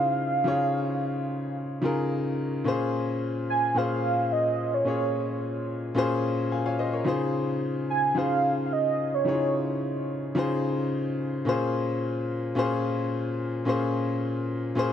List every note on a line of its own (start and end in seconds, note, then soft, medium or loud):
0.00 0.44 C#3 medium
0.00 0.45 D#4 medium
0.00 2.68 E4 medium
0.00 0.46 F4 medium
0.00 0.47 G#4 medium
0.00 0.31 C5 medium
0.00 0.48 C#5 medium
0.00 2.12 F5 loud
0.44 1.33 C#3 medium
0.44 1.34 D#4 medium
0.44 1.34 F4 medium
0.44 1.35 G#4 medium
0.44 1.35 C#5 medium
1.82 2.49 C#3 medium
1.82 2.49 D#4 medium
1.82 2.50 F4 medium
1.82 2.50 G#4 medium
1.82 2.51 A#4 loud
2.64 3.53 A#2 medium
2.64 3.54 C#4 medium
2.64 3.54 F4 medium
2.64 3.55 G#4 medium
2.64 3.55 C5 loud
3.50 3.79 G#5 loud
3.74 4.63 A#2 medium
3.74 4.64 C#4 medium
3.74 4.64 F4 medium
3.74 4.65 G#4 medium
3.74 4.65 C5 medium
3.74 4.34 F5 loud
4.32 4.76 D#5 loud
4.74 5.56 C#5 medium
4.84 5.73 A#2 medium
4.84 5.74 C#4 medium
4.84 5.74 F4 medium
4.84 5.75 G#4 medium
4.84 5.75 C#5 medium
5.95 6.84 A#2 medium
5.95 6.84 C#4 medium
5.95 6.85 F4 medium
5.95 6.85 G#4 medium
5.95 6.52 C5 loud
6.51 6.64 F5 medium
6.51 6.65 G#5 medium
6.66 6.78 C#5 medium
6.66 6.78 F5 medium
6.79 6.93 C5 medium
6.79 6.92 D#5 medium
6.93 7.20 A#4 medium
6.93 7.19 C#5 medium
7.05 7.94 C#3 medium
7.05 7.94 D#4 medium
7.05 7.95 F4 medium
7.05 7.95 G#4 medium
7.05 7.95 C5 loud
7.90 8.19 G#5 loud
8.15 9.04 C#3 medium
8.15 9.04 D#4 medium
8.15 9.05 F4 medium
8.15 9.05 G#4 medium
8.15 9.06 C5 medium
8.15 8.65 F5 loud
8.66 8.74 F5 medium
8.73 9.16 D#5 loud
9.14 9.96 C#5 medium
9.25 10.14 C#3 medium
9.25 10.14 D#4 medium
9.25 9.33 E4 medium
9.25 10.15 G#4 medium
9.25 10.16 C#5 medium
9.33 10.18 F4 medium
10.35 11.24 C#3 medium
10.35 11.24 D#4 medium
10.35 11.25 F4 medium
10.35 11.25 G#4 medium
10.35 11.26 C5 loud
11.45 12.34 A#2 medium
11.45 12.35 C#4 medium
11.45 12.35 F4 medium
11.45 12.35 G#4 medium
11.45 12.36 C5 loud
12.55 13.44 A#2 medium
12.55 13.45 C#4 medium
12.55 13.45 F4 medium
12.55 13.46 G#4 medium
12.55 13.46 C5 loud
13.65 14.54 A#2 medium
13.65 14.55 C#4 medium
13.65 14.55 F4 medium
13.65 14.56 G#4 medium
13.65 14.56 C5 loud
14.75 14.93 A#2 loud
14.75 14.93 C#4 medium
14.75 14.93 F4 medium
14.75 14.93 G#4 medium
14.75 14.93 C5 loud